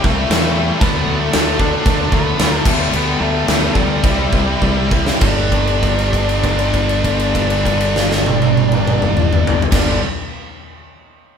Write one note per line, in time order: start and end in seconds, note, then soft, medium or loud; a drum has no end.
0.00 0.27 C3 loud
0.00 0.80 G3 loud
0.00 0.81 C4 loud
0.00 0.29 C4 medium
0.00 0.30 E4 medium
0.00 0.81 C5 medium
0.00 2.63 E5 medium
0.00 0.81 G5 medium
0.00 0.81 E6 medium
0.04 0.24 C2 medium
0.04 0.29 G3 medium
0.04 0.78 A3 medium
0.04 0.84 A4 medium
0.04 kick loud
0.29 0.71 E2 medium
0.29 0.79 C3 medium
0.29 0.56 G3 medium
0.29 0.54 C4 medium
0.29 0.53 E4 loud
0.29 snare loud
0.29 crash medium
0.54 0.80 G3 medium
0.54 0.80 C4 medium
0.54 0.79 E4 medium
0.81 1.02 D2 medium
0.81 1.31 D3 medium
0.81 1.08 F#3 loud
0.81 1.06 A3 loud
0.81 1.18 B3 medium
0.81 1.05 D4 loud
0.81 2.64 A4 medium
0.81 1.18 B4 loud
0.81 2.64 F#5 medium
0.81 2.63 D6 medium
0.81 kick loud
0.81 crash medium
1.06 1.28 D2 medium
1.06 1.32 F#3 medium
1.06 1.33 A3 medium
1.06 1.33 D4 medium
1.21 1.57 A3 medium
1.21 1.57 A4 medium
1.32 1.75 D2 medium
1.32 1.60 D3 medium
1.32 1.59 F#3 medium
1.32 1.58 A3 medium
1.32 1.57 D4 medium
1.32 snare loud
1.32 crash medium
1.58 1.83 D3 medium
1.58 1.84 F#3 medium
1.58 1.85 A3 medium
1.58 1.86 D4 medium
1.58 2.08 D4 medium
1.58 2.08 D5 loud
1.58 kick medium
1.84 2.07 D2 medium
1.84 2.37 D3 medium
1.84 2.13 F#3 medium
1.84 2.12 A3 medium
1.84 2.11 D4 loud
1.84 kick loud
1.84 crash medium
2.12 2.33 D2 medium
2.12 2.38 F#3 medium
2.12 2.39 A3 medium
2.12 2.62 B3 medium
2.12 2.40 D4 medium
2.12 2.57 B4 loud
2.12 kick medium
2.39 2.60 D2 medium
2.39 2.64 D3 medium
2.39 2.64 F#3 medium
2.39 2.65 A3 loud
2.39 2.65 D4 loud
2.39 snare loud
2.39 crash medium
2.57 2.67 A4 loud
2.64 2.87 D2 medium
2.64 4.02 G2 medium
2.64 2.92 G3 medium
2.64 2.91 A3 medium
2.64 2.93 B3 medium
2.64 2.94 D4 medium
2.64 2.91 A4 medium
2.64 4.03 B4 medium
2.64 4.03 D5 medium
2.64 5.19 G5 medium
2.64 4.03 D6 medium
2.64 kick loud
2.64 crash loud
2.68 2.91 D3 medium
2.92 3.14 D2 medium
2.92 3.45 D3 medium
2.92 3.20 G3 medium
2.92 3.18 B3 medium
2.92 3.19 B3 loud
2.92 3.18 D4 loud
2.92 3.22 B4 loud
2.92 crash medium
3.19 3.42 D2 medium
3.19 3.46 G3 medium
3.19 3.72 A3 medium
3.19 3.47 B3 medium
3.19 3.48 D4 medium
3.19 3.72 A4 medium
3.46 3.70 D2 medium
3.46 3.76 D3 medium
3.46 3.76 G3 medium
3.46 3.75 B3 medium
3.46 3.74 D4 medium
3.46 snare loud
3.46 crash medium
3.75 3.98 D2 medium
3.75 4.02 D3 medium
3.75 4.88 G3 medium
3.75 4.02 G3 medium
3.75 4.02 B3 medium
3.75 4.02 D4 medium
3.75 4.88 G4 medium
3.75 kick medium
4.02 4.26 C2 medium
4.02 4.59 C3 medium
4.02 4.33 G3 medium
4.02 4.32 C4 loud
4.02 4.31 E4 loud
4.02 5.20 C5 medium
4.02 5.20 E5 medium
4.02 5.20 E6 medium
4.02 kick loud
4.02 crash medium
4.32 4.56 C2 medium
4.32 4.61 G3 medium
4.32 4.61 C4 medium
4.32 4.62 E4 medium
4.32 kick medium
4.61 5.09 C2 loud
4.61 5.19 C3 medium
4.61 4.93 G3 loud
4.61 4.91 C4 medium
4.61 4.90 E4 loud
4.61 kick medium
4.91 5.21 G3 medium
4.91 5.20 C4 medium
4.91 5.20 E4 medium
4.91 kick medium
5.06 snare medium
5.20 9.61 G1 medium
5.20 9.64 G2 loud
5.20 9.66 D3 loud
5.20 9.61 D4 medium
5.20 9.61 G4 medium
5.20 9.61 B4 medium
5.20 9.61 G5 medium
5.20 kick loud
5.20 crash medium
5.24 9.66 G3 loud
5.52 kick medium
5.52 crash soft
5.67 crash soft
5.83 kick medium
5.83 crash soft
5.99 crash soft
6.13 kick medium
6.13 crash soft
6.29 crash medium
6.44 kick medium
6.44 crash soft
6.59 crash medium
6.74 kick medium
6.74 crash soft
6.89 crash soft
7.04 kick medium
7.04 crash medium
7.19 crash medium
7.35 kick medium
7.35 crash medium
7.50 crash medium
7.65 kick medium
7.65 crash medium
7.80 crash medium
7.96 snare medium
8.11 snare medium
8.26 high tom medium
8.42 high tom medium
8.57 high tom loud
8.72 mid tom loud
8.87 mid tom loud
9.02 mid tom loud
9.17 mid tom loud
9.33 mid tom loud
9.47 floor tom loud
9.62 floor tom loud
9.71 9.98 G1 medium
9.71 9.99 G2 medium
9.71 10.01 D3 medium
9.71 9.98 D4 medium
9.71 9.98 G4 medium
9.71 9.98 B4 medium
9.71 9.98 G5 medium
9.71 kick loud
9.71 snare loud
9.71 crash loud
9.76 10.01 G3 loud